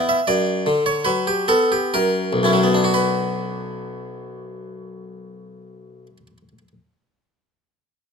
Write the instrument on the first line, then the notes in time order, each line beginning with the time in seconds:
harpsichord
Already playing: B3 E4
0.09 E5
0.27 F#2 D5
0.66 D3
0.86 C#5
1.05 F#3 B4
1.27 G4
1.48 B3 A4
1.72 G4
1.94 F#2 A#4
2.33 B1
2.43 F#2 C#4 E4
2.53 F#3
2.63 B3
2.74 D4
2.84 F#4
2.94 B4